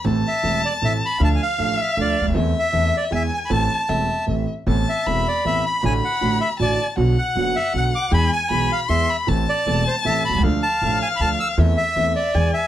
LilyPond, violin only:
\new Staff \with { instrumentName = "Violin" } { \time 3/4 \key a \minor \tempo 4 = 156 a''2. | f''2. | e''2 gis''4 | a''4 e''4. r8 |
a''4 b''2 | b''2 a''4 | fis''2. | gis''4 b''4 c'''8 b''8 |
a''2. | f''2. | e''2 gis''4 | }